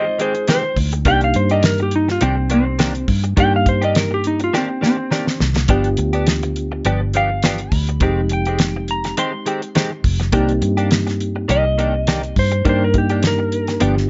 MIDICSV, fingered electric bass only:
0, 0, Header, 1, 2, 480
1, 0, Start_track
1, 0, Key_signature, -3, "minor"
1, 0, Tempo, 579710
1, 877, Time_signature, 4, 2, 24, 8
1, 11672, End_track
2, 0, Start_track
2, 0, Title_t, "Fingered electric bass"
2, 0, Program_c, 0, 33
2, 632, Note_on_c, 0, 38, 88
2, 856, Note_off_c, 0, 38, 0
2, 872, Note_on_c, 0, 36, 94
2, 1095, Note_off_c, 0, 36, 0
2, 1118, Note_on_c, 0, 43, 81
2, 1803, Note_off_c, 0, 43, 0
2, 1837, Note_on_c, 0, 36, 85
2, 2522, Note_off_c, 0, 36, 0
2, 2551, Note_on_c, 0, 43, 80
2, 2774, Note_off_c, 0, 43, 0
2, 2788, Note_on_c, 0, 43, 86
2, 3717, Note_off_c, 0, 43, 0
2, 4477, Note_on_c, 0, 36, 87
2, 4697, Note_off_c, 0, 36, 0
2, 4709, Note_on_c, 0, 31, 84
2, 4932, Note_off_c, 0, 31, 0
2, 4952, Note_on_c, 0, 38, 74
2, 5639, Note_off_c, 0, 38, 0
2, 5672, Note_on_c, 0, 31, 77
2, 6359, Note_off_c, 0, 31, 0
2, 6391, Note_on_c, 0, 38, 86
2, 6613, Note_off_c, 0, 38, 0
2, 6627, Note_on_c, 0, 29, 89
2, 7557, Note_off_c, 0, 29, 0
2, 8315, Note_on_c, 0, 29, 90
2, 8536, Note_off_c, 0, 29, 0
2, 8550, Note_on_c, 0, 36, 87
2, 8774, Note_off_c, 0, 36, 0
2, 8792, Note_on_c, 0, 43, 79
2, 9480, Note_off_c, 0, 43, 0
2, 9517, Note_on_c, 0, 36, 87
2, 10203, Note_off_c, 0, 36, 0
2, 10237, Note_on_c, 0, 43, 80
2, 10458, Note_off_c, 0, 43, 0
2, 10480, Note_on_c, 0, 43, 88
2, 11404, Note_off_c, 0, 43, 0
2, 11438, Note_on_c, 0, 31, 94
2, 11672, Note_off_c, 0, 31, 0
2, 11672, End_track
0, 0, End_of_file